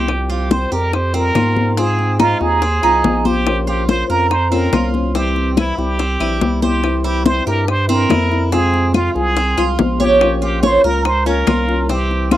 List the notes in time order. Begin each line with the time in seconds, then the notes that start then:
Already playing: C2 G4
0.08 C3 F3 G3 C4 G4, high bongo, high conga, claves
0.30 F4 G4, high conga
0.50 C3 F3 G3 C4 G4 C5, high bongo, high conga
0.72 F2 G3 C4 G4 A#4, high bongo, high conga
0.92 C5, muted nylon-string guitar stroke, high bongo, high conga, claves
1.14 F3 G3 C4 G4 A#4, high bongo, high conga
1.35 G#2 F3 G3 C4 F4 G4, high bongo, low bongo, high conga, claves
1.56 G3 C4 G4, high bongo, high conga
1.77 G#3 C4 F4 G#4, high bongo, high conga
1.99 high bongo, high conga
2.19 G#3 C4 D#4 F4, high bongo, high conga, claves
2.40 D#2 C4 F4 G#4, high bongo
2.62 C4, muted nylon-string guitar stroke, high bongo, high conga
2.82 C2 C4 D#4 F4, high bongo, high conga, claves
3.04 A#1 G#3 C4 F4, high bongo, low bongo, high conga
3.25 C4 F4 G4 C5, high conga
3.46 F3 A#3 C#4 F4 C5, high bongo, high conga, claves
3.67 F4 G4, high conga
3.88 F3 A#3 C#4 F4 C5, high bongo, high conga
4.09 F2 C#4 F4 A#4 C5, high bongo, high conga
4.30 C5, muted nylon-string guitar stroke, high bongo, high conga, claves
4.50 A#3 C4 C#4 F4 A#4 C5, high bongo, high conga
4.72 C2 A#3 C#4 F4 C5, high bongo, low bongo, high conga, claves
4.93 C#4 F4 C5, high bongo, high conga
5.14 C3 E3 G3 C4 E4 G4, high bongo, high conga
5.36 high bongo, high conga
5.56 C3 E3 G3 C4 E4, high bongo, high conga, claves
5.78 C2 G3 C4 E4 G4, high bongo
5.99 C4, muted nylon-string guitar stroke, high bongo, high conga
6.20 A#1 E3 G3 C4 E4, high bongo, high conga, claves
6.41 C2 E3 G3 C4, high bongo, low bongo, high conga
6.62 G3 C4 E4 G4 C5, high conga
6.83 C3 E3 G3 C4 E4, high bongo, high conga, claves
7.04 E4 G4, high conga
7.25 C3 E3 G3 C4 E4 C5, high bongo, high conga
7.46 G2 G3 C4 E4 G4 A#4, high bongo, high conga
7.67 C5, muted nylon-string guitar stroke, high bongo, high conga, claves
7.88 E3 G3 C4 E4 A#4, high bongo, high conga
8.09 F2 E3 G3 C4 E4, high bongo, low bongo, high conga, claves
8.31 G3 C4 E4, high bongo
8.51 C3 F3 G#3 C4 F4 G#4, high bongo, high conga
8.74 high bongo, high conga
8.93 C3 F3 G#3 C4 F4, high bongo, high conga, claves
9.15 C2 G#3 C4 F4 G#4, high bongo
9.36 C4, muted nylon-string guitar stroke, high bongo, high conga
9.57 C2 F3 G#3 C4 F4, high bongo, high conga, claves
9.78 A#1 F3 G#3 C4 F4, high bongo, low bongo, high conga
10.00 G#3 C4 F4 G4 C#5, high conga
10.20 F3 A#3 C#4 F4, high bongo, high conga, claves
10.42 F4 G4, high conga
10.62 F3 A#3 C#4 F4 C5 C#5, high bongo, high conga
10.84 C#2 A#3 C#4 F4 A#4, high bongo, high conga
11.05 C5, muted nylon-string guitar stroke, high bongo, high conga, claves
11.25 A#3 C#4 F4 A#4, high bongo, high conga
11.47 C2 F3 A#3 C#4 F4, high bongo, low bongo, high conga, claves
11.68 A#3 C#4 F4, high bongo
11.89 C3 E3 G3 C4 E4 G4, high bongo, high conga
12.11 high bongo, high conga
12.31 C3 E3 G3 C4 E4 F4, high bongo, high conga, claves